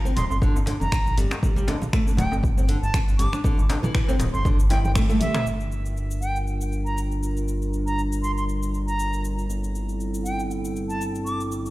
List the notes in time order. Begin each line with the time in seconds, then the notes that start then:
0.05 C4, shaker
0.16 D1 C6, open hi-hat, muted conga, djembe slap, high conga, low conga, shaker
0.30 G1 C6, djembe tone, shaker
0.42 D3, kick, muted conga, shaker
0.56 djembe tone, shaker
0.66 D3, open hi-hat, djembe slap, muted conga, shaker
0.80 F1 A#5, djembe tone, high conga, shaker
0.92 finger snap, kick, muted conga, shaker
1.06 A#1, shaker
1.18 G1 G3, open hi-hat, djembe tone, shaker
1.31 finger snap, djembe slap, muted conga, high conga, shaker
1.43 G3, kick, djembe tone, high conga, shaker
1.56 G1 G3, muted conga, shaker
1.68 D3, open hi-hat, djembe slap, djembe tone, shaker
1.82 muted conga, high conga, low conga, shaker
1.93 A3, finger snap, kick, shaker
2.07 djembe tone, shaker
2.17 D1 G5, open hi-hat, muted conga, djembe slap, high conga, low conga, shaker
2.32 G1, djembe tone, shaker
2.43 kick, muted conga, shaker
2.57 C4, djembe tone, shaker
2.68 D3, open hi-hat, muted conga, shaker
2.82 G1 A5, shaker
2.94 finger snap, kick, muted conga, djembe tone, high conga, shaker
3.08 G1, shaker
3.19 G1 G3 D6, open hi-hat, djembe tone, shaker
3.33 D4, finger snap, muted conga, shaker
3.44 D3, kick, high conga, djembe tone, shaker
3.58 G1, muted conga, shaker
3.69 D3, open hi-hat, djembe slap, shaker
3.83 E3, muted conga, djembe tone, high conga, low conga, shaker
3.95 E3, finger snap, kick, shaker
4.08 C4, djembe tone, shaker
4.19 D1, open hi-hat, djembe slap, muted conga, high conga, low conga, shaker
4.33 G1 C6, djembe tone, shaker
4.45 D3, kick, muted conga, shaker
4.59 G1, shaker
4.70 E4 G5, open hi-hat, djembe slap, muted conga, djembe tone, shaker
4.84 G5, high conga, shaker
4.95 A3, finger snap, kick, muted conga, djembe tone, shaker
5.09 A3, high tom, shaker
5.20 G3 E5, open hi-hat, mid tom, djembe tone, low conga, shaker
5.34 finger snap, mid tom, djembe slap, muted conga, high conga, shaker
5.46 G1 G3 D4 F4 A#4, shaker
5.60 shaker
5.72 shaker
5.86 shaker
5.97 shaker
6.11 shaker
6.21 G5, shaker
6.36 shaker
6.47 shaker
6.61 shaker
6.72 shaker
6.85 A#5, shaker
6.98 shaker
7.12 shaker
7.23 shaker
7.37 shaker
7.48 shaker
7.62 shaker
7.73 shaker
7.86 A#5, shaker
7.99 shaker
8.12 shaker
8.23 C6, shaker
8.37 C6, shaker
8.49 shaker
8.63 shaker
8.74 shaker
8.87 A#5, shaker
8.99 shaker
9.13 shaker
9.25 shaker
9.39 shaker
9.49 G1 C4 E4 A4, shaker
9.64 shaker
9.75 shaker
9.89 shaker
10.00 shaker
10.14 shaker
10.25 G5, shaker
10.39 shaker
10.51 shaker
10.65 shaker
10.76 shaker
10.89 A5, shaker
11.01 shaker
11.15 shaker
11.26 D6, shaker
11.40 shaker
11.52 shaker
11.66 shaker